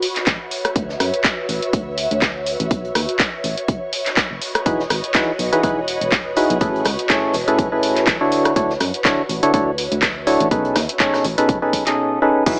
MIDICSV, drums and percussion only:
0, 0, Header, 1, 2, 480
1, 0, Start_track
1, 0, Tempo, 487805
1, 745, Time_signature, 4, 2, 24, 8
1, 12394, End_track
2, 0, Start_track
2, 0, Title_t, "Drums"
2, 20, Note_on_c, 9, 42, 71
2, 25, Note_on_c, 9, 46, 108
2, 118, Note_off_c, 9, 42, 0
2, 123, Note_off_c, 9, 46, 0
2, 156, Note_on_c, 9, 39, 36
2, 158, Note_on_c, 9, 42, 63
2, 160, Note_on_c, 9, 38, 38
2, 255, Note_off_c, 9, 39, 0
2, 257, Note_off_c, 9, 42, 0
2, 259, Note_off_c, 9, 38, 0
2, 260, Note_on_c, 9, 42, 89
2, 263, Note_on_c, 9, 39, 120
2, 265, Note_off_c, 9, 42, 0
2, 265, Note_on_c, 9, 36, 121
2, 265, Note_on_c, 9, 42, 51
2, 267, Note_on_c, 9, 38, 115
2, 362, Note_off_c, 9, 39, 0
2, 363, Note_off_c, 9, 36, 0
2, 363, Note_off_c, 9, 42, 0
2, 366, Note_off_c, 9, 38, 0
2, 503, Note_on_c, 9, 42, 58
2, 505, Note_on_c, 9, 46, 93
2, 601, Note_off_c, 9, 42, 0
2, 603, Note_off_c, 9, 46, 0
2, 638, Note_on_c, 9, 37, 73
2, 638, Note_on_c, 9, 42, 63
2, 641, Note_off_c, 9, 42, 0
2, 641, Note_on_c, 9, 42, 39
2, 737, Note_off_c, 9, 37, 0
2, 739, Note_off_c, 9, 42, 0
2, 743, Note_on_c, 9, 42, 77
2, 745, Note_off_c, 9, 42, 0
2, 745, Note_on_c, 9, 36, 118
2, 745, Note_on_c, 9, 42, 50
2, 843, Note_off_c, 9, 36, 0
2, 844, Note_off_c, 9, 42, 0
2, 878, Note_on_c, 9, 38, 45
2, 976, Note_off_c, 9, 38, 0
2, 985, Note_on_c, 9, 37, 65
2, 985, Note_on_c, 9, 46, 109
2, 987, Note_on_c, 9, 42, 63
2, 1084, Note_off_c, 9, 37, 0
2, 1084, Note_off_c, 9, 46, 0
2, 1085, Note_off_c, 9, 42, 0
2, 1119, Note_on_c, 9, 42, 62
2, 1217, Note_off_c, 9, 42, 0
2, 1223, Note_on_c, 9, 39, 115
2, 1225, Note_on_c, 9, 36, 120
2, 1225, Note_on_c, 9, 38, 105
2, 1225, Note_on_c, 9, 42, 46
2, 1228, Note_off_c, 9, 42, 0
2, 1228, Note_on_c, 9, 42, 78
2, 1322, Note_off_c, 9, 39, 0
2, 1323, Note_off_c, 9, 36, 0
2, 1323, Note_off_c, 9, 38, 0
2, 1327, Note_off_c, 9, 42, 0
2, 1465, Note_on_c, 9, 46, 90
2, 1471, Note_on_c, 9, 42, 66
2, 1564, Note_off_c, 9, 46, 0
2, 1570, Note_off_c, 9, 42, 0
2, 1599, Note_on_c, 9, 42, 61
2, 1697, Note_off_c, 9, 42, 0
2, 1703, Note_on_c, 9, 42, 92
2, 1705, Note_off_c, 9, 42, 0
2, 1705, Note_on_c, 9, 36, 119
2, 1705, Note_on_c, 9, 42, 50
2, 1803, Note_off_c, 9, 36, 0
2, 1804, Note_off_c, 9, 42, 0
2, 1942, Note_on_c, 9, 42, 73
2, 1945, Note_on_c, 9, 46, 109
2, 2041, Note_off_c, 9, 42, 0
2, 2043, Note_off_c, 9, 46, 0
2, 2078, Note_on_c, 9, 42, 61
2, 2176, Note_off_c, 9, 42, 0
2, 2183, Note_on_c, 9, 39, 115
2, 2184, Note_on_c, 9, 42, 83
2, 2185, Note_off_c, 9, 42, 0
2, 2185, Note_on_c, 9, 36, 125
2, 2185, Note_on_c, 9, 42, 50
2, 2188, Note_on_c, 9, 38, 112
2, 2282, Note_off_c, 9, 39, 0
2, 2283, Note_off_c, 9, 36, 0
2, 2284, Note_off_c, 9, 42, 0
2, 2287, Note_off_c, 9, 38, 0
2, 2425, Note_on_c, 9, 46, 93
2, 2426, Note_on_c, 9, 42, 65
2, 2523, Note_off_c, 9, 46, 0
2, 2525, Note_off_c, 9, 42, 0
2, 2558, Note_on_c, 9, 42, 60
2, 2657, Note_off_c, 9, 42, 0
2, 2665, Note_on_c, 9, 36, 114
2, 2665, Note_on_c, 9, 42, 50
2, 2666, Note_off_c, 9, 42, 0
2, 2666, Note_on_c, 9, 42, 87
2, 2763, Note_off_c, 9, 36, 0
2, 2765, Note_off_c, 9, 42, 0
2, 2801, Note_on_c, 9, 42, 39
2, 2899, Note_off_c, 9, 42, 0
2, 2905, Note_on_c, 9, 37, 69
2, 2905, Note_on_c, 9, 46, 105
2, 2908, Note_on_c, 9, 42, 64
2, 3004, Note_off_c, 9, 37, 0
2, 3004, Note_off_c, 9, 46, 0
2, 3006, Note_off_c, 9, 42, 0
2, 3038, Note_on_c, 9, 42, 62
2, 3137, Note_off_c, 9, 42, 0
2, 3143, Note_on_c, 9, 39, 110
2, 3145, Note_on_c, 9, 36, 117
2, 3145, Note_on_c, 9, 38, 118
2, 3145, Note_on_c, 9, 42, 46
2, 3147, Note_off_c, 9, 42, 0
2, 3147, Note_on_c, 9, 42, 90
2, 3241, Note_off_c, 9, 39, 0
2, 3243, Note_off_c, 9, 36, 0
2, 3244, Note_off_c, 9, 38, 0
2, 3246, Note_off_c, 9, 42, 0
2, 3385, Note_on_c, 9, 42, 60
2, 3385, Note_on_c, 9, 46, 90
2, 3483, Note_off_c, 9, 42, 0
2, 3483, Note_off_c, 9, 46, 0
2, 3518, Note_on_c, 9, 42, 61
2, 3616, Note_off_c, 9, 42, 0
2, 3624, Note_on_c, 9, 42, 49
2, 3625, Note_on_c, 9, 36, 114
2, 3723, Note_off_c, 9, 36, 0
2, 3723, Note_off_c, 9, 42, 0
2, 3863, Note_on_c, 9, 42, 73
2, 3865, Note_on_c, 9, 46, 106
2, 3962, Note_off_c, 9, 42, 0
2, 3963, Note_off_c, 9, 46, 0
2, 3996, Note_on_c, 9, 39, 35
2, 3998, Note_on_c, 9, 42, 59
2, 4003, Note_on_c, 9, 38, 36
2, 4094, Note_off_c, 9, 39, 0
2, 4096, Note_off_c, 9, 42, 0
2, 4101, Note_on_c, 9, 42, 78
2, 4102, Note_off_c, 9, 38, 0
2, 4103, Note_on_c, 9, 39, 109
2, 4104, Note_off_c, 9, 42, 0
2, 4104, Note_on_c, 9, 42, 47
2, 4105, Note_on_c, 9, 36, 122
2, 4105, Note_on_c, 9, 38, 106
2, 4201, Note_off_c, 9, 39, 0
2, 4203, Note_off_c, 9, 36, 0
2, 4203, Note_off_c, 9, 42, 0
2, 4204, Note_off_c, 9, 38, 0
2, 4345, Note_on_c, 9, 46, 93
2, 4350, Note_on_c, 9, 42, 70
2, 4443, Note_off_c, 9, 46, 0
2, 4448, Note_off_c, 9, 42, 0
2, 4476, Note_on_c, 9, 42, 41
2, 4478, Note_off_c, 9, 42, 0
2, 4478, Note_on_c, 9, 37, 81
2, 4478, Note_on_c, 9, 42, 60
2, 4576, Note_off_c, 9, 37, 0
2, 4576, Note_off_c, 9, 42, 0
2, 4585, Note_on_c, 9, 36, 112
2, 4585, Note_on_c, 9, 42, 51
2, 4587, Note_off_c, 9, 42, 0
2, 4587, Note_on_c, 9, 42, 83
2, 4683, Note_off_c, 9, 36, 0
2, 4686, Note_off_c, 9, 42, 0
2, 4717, Note_on_c, 9, 38, 41
2, 4816, Note_off_c, 9, 38, 0
2, 4820, Note_on_c, 9, 42, 68
2, 4825, Note_on_c, 9, 37, 67
2, 4825, Note_on_c, 9, 46, 105
2, 4918, Note_off_c, 9, 42, 0
2, 4923, Note_off_c, 9, 37, 0
2, 4923, Note_off_c, 9, 46, 0
2, 4958, Note_on_c, 9, 42, 62
2, 5056, Note_off_c, 9, 42, 0
2, 5057, Note_on_c, 9, 42, 85
2, 5063, Note_on_c, 9, 39, 107
2, 5065, Note_off_c, 9, 42, 0
2, 5065, Note_on_c, 9, 36, 115
2, 5065, Note_on_c, 9, 42, 48
2, 5068, Note_on_c, 9, 38, 111
2, 5162, Note_off_c, 9, 39, 0
2, 5163, Note_off_c, 9, 36, 0
2, 5163, Note_off_c, 9, 42, 0
2, 5167, Note_off_c, 9, 38, 0
2, 5305, Note_on_c, 9, 46, 85
2, 5308, Note_on_c, 9, 42, 66
2, 5403, Note_off_c, 9, 46, 0
2, 5407, Note_off_c, 9, 42, 0
2, 5438, Note_on_c, 9, 42, 61
2, 5537, Note_off_c, 9, 42, 0
2, 5544, Note_on_c, 9, 36, 111
2, 5545, Note_on_c, 9, 42, 49
2, 5553, Note_off_c, 9, 42, 0
2, 5553, Note_on_c, 9, 42, 93
2, 5643, Note_off_c, 9, 36, 0
2, 5652, Note_off_c, 9, 42, 0
2, 5785, Note_on_c, 9, 42, 70
2, 5785, Note_on_c, 9, 46, 106
2, 5883, Note_off_c, 9, 46, 0
2, 5884, Note_off_c, 9, 42, 0
2, 5918, Note_on_c, 9, 42, 62
2, 6016, Note_off_c, 9, 42, 0
2, 6021, Note_on_c, 9, 42, 83
2, 6022, Note_on_c, 9, 38, 117
2, 6023, Note_on_c, 9, 39, 113
2, 6024, Note_on_c, 9, 36, 117
2, 6025, Note_off_c, 9, 42, 0
2, 6025, Note_on_c, 9, 42, 49
2, 6120, Note_off_c, 9, 38, 0
2, 6121, Note_off_c, 9, 39, 0
2, 6123, Note_off_c, 9, 36, 0
2, 6123, Note_off_c, 9, 42, 0
2, 6260, Note_on_c, 9, 42, 71
2, 6265, Note_on_c, 9, 46, 87
2, 6359, Note_off_c, 9, 42, 0
2, 6363, Note_off_c, 9, 46, 0
2, 6398, Note_on_c, 9, 42, 60
2, 6496, Note_off_c, 9, 42, 0
2, 6500, Note_on_c, 9, 42, 79
2, 6504, Note_on_c, 9, 36, 109
2, 6505, Note_off_c, 9, 42, 0
2, 6505, Note_on_c, 9, 42, 52
2, 6603, Note_off_c, 9, 36, 0
2, 6603, Note_off_c, 9, 42, 0
2, 6648, Note_on_c, 9, 42, 46
2, 6735, Note_off_c, 9, 42, 0
2, 6735, Note_on_c, 9, 42, 62
2, 6745, Note_on_c, 9, 37, 65
2, 6745, Note_on_c, 9, 46, 102
2, 6834, Note_off_c, 9, 42, 0
2, 6844, Note_off_c, 9, 37, 0
2, 6844, Note_off_c, 9, 46, 0
2, 6878, Note_on_c, 9, 42, 64
2, 6976, Note_off_c, 9, 42, 0
2, 6983, Note_on_c, 9, 39, 110
2, 6984, Note_on_c, 9, 36, 110
2, 6984, Note_on_c, 9, 38, 117
2, 6985, Note_on_c, 9, 42, 49
2, 6989, Note_off_c, 9, 42, 0
2, 6989, Note_on_c, 9, 42, 80
2, 7082, Note_off_c, 9, 38, 0
2, 7082, Note_off_c, 9, 39, 0
2, 7083, Note_off_c, 9, 36, 0
2, 7088, Note_off_c, 9, 42, 0
2, 7216, Note_on_c, 9, 42, 67
2, 7225, Note_on_c, 9, 46, 85
2, 7315, Note_off_c, 9, 42, 0
2, 7324, Note_off_c, 9, 46, 0
2, 7358, Note_on_c, 9, 42, 63
2, 7456, Note_off_c, 9, 42, 0
2, 7464, Note_on_c, 9, 36, 110
2, 7465, Note_on_c, 9, 42, 50
2, 7467, Note_off_c, 9, 42, 0
2, 7467, Note_on_c, 9, 42, 85
2, 7563, Note_off_c, 9, 36, 0
2, 7565, Note_off_c, 9, 42, 0
2, 7702, Note_on_c, 9, 42, 71
2, 7705, Note_on_c, 9, 46, 100
2, 7800, Note_off_c, 9, 42, 0
2, 7803, Note_off_c, 9, 46, 0
2, 7836, Note_on_c, 9, 39, 34
2, 7838, Note_on_c, 9, 38, 34
2, 7838, Note_on_c, 9, 42, 63
2, 7935, Note_off_c, 9, 39, 0
2, 7936, Note_off_c, 9, 42, 0
2, 7937, Note_off_c, 9, 38, 0
2, 7941, Note_on_c, 9, 38, 121
2, 7943, Note_on_c, 9, 39, 109
2, 7945, Note_on_c, 9, 36, 115
2, 7945, Note_on_c, 9, 42, 51
2, 7946, Note_off_c, 9, 42, 0
2, 7946, Note_on_c, 9, 42, 80
2, 8039, Note_off_c, 9, 38, 0
2, 8042, Note_off_c, 9, 39, 0
2, 8043, Note_off_c, 9, 36, 0
2, 8044, Note_off_c, 9, 42, 0
2, 8185, Note_on_c, 9, 46, 84
2, 8186, Note_on_c, 9, 42, 66
2, 8284, Note_off_c, 9, 42, 0
2, 8284, Note_off_c, 9, 46, 0
2, 8312, Note_on_c, 9, 42, 42
2, 8318, Note_off_c, 9, 42, 0
2, 8318, Note_on_c, 9, 37, 77
2, 8318, Note_on_c, 9, 42, 63
2, 8417, Note_off_c, 9, 37, 0
2, 8417, Note_off_c, 9, 42, 0
2, 8425, Note_on_c, 9, 36, 109
2, 8425, Note_on_c, 9, 42, 55
2, 8428, Note_off_c, 9, 42, 0
2, 8428, Note_on_c, 9, 42, 83
2, 8523, Note_off_c, 9, 36, 0
2, 8526, Note_off_c, 9, 42, 0
2, 8558, Note_on_c, 9, 38, 43
2, 8657, Note_off_c, 9, 38, 0
2, 8660, Note_on_c, 9, 42, 68
2, 8665, Note_on_c, 9, 37, 62
2, 8665, Note_on_c, 9, 46, 101
2, 8758, Note_off_c, 9, 42, 0
2, 8764, Note_off_c, 9, 37, 0
2, 8764, Note_off_c, 9, 46, 0
2, 8798, Note_on_c, 9, 42, 68
2, 8897, Note_off_c, 9, 42, 0
2, 8903, Note_on_c, 9, 39, 109
2, 8905, Note_on_c, 9, 36, 110
2, 8905, Note_on_c, 9, 42, 51
2, 8910, Note_off_c, 9, 42, 0
2, 8910, Note_on_c, 9, 38, 114
2, 8910, Note_on_c, 9, 42, 90
2, 9002, Note_off_c, 9, 39, 0
2, 9003, Note_off_c, 9, 36, 0
2, 9008, Note_off_c, 9, 42, 0
2, 9009, Note_off_c, 9, 38, 0
2, 9143, Note_on_c, 9, 42, 70
2, 9145, Note_on_c, 9, 46, 85
2, 9242, Note_off_c, 9, 42, 0
2, 9244, Note_off_c, 9, 46, 0
2, 9278, Note_on_c, 9, 42, 66
2, 9377, Note_off_c, 9, 42, 0
2, 9384, Note_on_c, 9, 42, 88
2, 9385, Note_off_c, 9, 42, 0
2, 9385, Note_on_c, 9, 36, 107
2, 9385, Note_on_c, 9, 42, 54
2, 9483, Note_off_c, 9, 36, 0
2, 9483, Note_off_c, 9, 42, 0
2, 9622, Note_on_c, 9, 42, 62
2, 9625, Note_on_c, 9, 46, 104
2, 9720, Note_off_c, 9, 42, 0
2, 9723, Note_off_c, 9, 46, 0
2, 9758, Note_on_c, 9, 42, 67
2, 9857, Note_off_c, 9, 42, 0
2, 9863, Note_on_c, 9, 39, 114
2, 9865, Note_on_c, 9, 36, 114
2, 9865, Note_on_c, 9, 42, 85
2, 9866, Note_on_c, 9, 38, 111
2, 9962, Note_off_c, 9, 39, 0
2, 9963, Note_off_c, 9, 36, 0
2, 9964, Note_off_c, 9, 38, 0
2, 9964, Note_off_c, 9, 42, 0
2, 10105, Note_on_c, 9, 46, 87
2, 10106, Note_on_c, 9, 42, 64
2, 10203, Note_off_c, 9, 46, 0
2, 10204, Note_off_c, 9, 42, 0
2, 10238, Note_on_c, 9, 42, 67
2, 10336, Note_off_c, 9, 42, 0
2, 10344, Note_on_c, 9, 36, 113
2, 10345, Note_on_c, 9, 42, 76
2, 10443, Note_off_c, 9, 36, 0
2, 10443, Note_off_c, 9, 42, 0
2, 10476, Note_on_c, 9, 42, 46
2, 10575, Note_off_c, 9, 42, 0
2, 10584, Note_on_c, 9, 37, 62
2, 10584, Note_on_c, 9, 46, 105
2, 10585, Note_on_c, 9, 42, 75
2, 10586, Note_on_c, 9, 38, 108
2, 10683, Note_off_c, 9, 37, 0
2, 10683, Note_off_c, 9, 42, 0
2, 10683, Note_off_c, 9, 46, 0
2, 10685, Note_off_c, 9, 38, 0
2, 10718, Note_on_c, 9, 42, 69
2, 10816, Note_off_c, 9, 42, 0
2, 10821, Note_on_c, 9, 42, 58
2, 10823, Note_on_c, 9, 39, 115
2, 10824, Note_on_c, 9, 36, 113
2, 10825, Note_off_c, 9, 42, 0
2, 10825, Note_on_c, 9, 42, 54
2, 10921, Note_off_c, 9, 39, 0
2, 10923, Note_off_c, 9, 36, 0
2, 10923, Note_off_c, 9, 42, 0
2, 10958, Note_on_c, 9, 37, 57
2, 10962, Note_on_c, 9, 42, 73
2, 10964, Note_on_c, 9, 38, 110
2, 11056, Note_off_c, 9, 37, 0
2, 11060, Note_off_c, 9, 42, 0
2, 11062, Note_off_c, 9, 38, 0
2, 11064, Note_on_c, 9, 46, 89
2, 11163, Note_off_c, 9, 46, 0
2, 11196, Note_on_c, 9, 42, 58
2, 11198, Note_off_c, 9, 42, 0
2, 11198, Note_on_c, 9, 42, 66
2, 11296, Note_off_c, 9, 42, 0
2, 11304, Note_on_c, 9, 36, 111
2, 11305, Note_on_c, 9, 42, 54
2, 11311, Note_off_c, 9, 42, 0
2, 11311, Note_on_c, 9, 42, 82
2, 11403, Note_off_c, 9, 36, 0
2, 11409, Note_off_c, 9, 42, 0
2, 11544, Note_on_c, 9, 36, 61
2, 11545, Note_on_c, 9, 46, 104
2, 11549, Note_on_c, 9, 42, 69
2, 11643, Note_off_c, 9, 36, 0
2, 11643, Note_off_c, 9, 46, 0
2, 11647, Note_off_c, 9, 42, 0
2, 11676, Note_on_c, 9, 39, 37
2, 11678, Note_on_c, 9, 38, 34
2, 11678, Note_on_c, 9, 42, 68
2, 11774, Note_off_c, 9, 39, 0
2, 11776, Note_off_c, 9, 38, 0
2, 11776, Note_off_c, 9, 42, 0
2, 12265, Note_on_c, 9, 36, 115
2, 12265, Note_on_c, 9, 42, 56
2, 12265, Note_on_c, 9, 49, 105
2, 12267, Note_on_c, 9, 82, 46
2, 12269, Note_off_c, 9, 42, 0
2, 12269, Note_on_c, 9, 42, 86
2, 12363, Note_off_c, 9, 36, 0
2, 12363, Note_off_c, 9, 49, 0
2, 12365, Note_off_c, 9, 82, 0
2, 12367, Note_off_c, 9, 42, 0
2, 12394, End_track
0, 0, End_of_file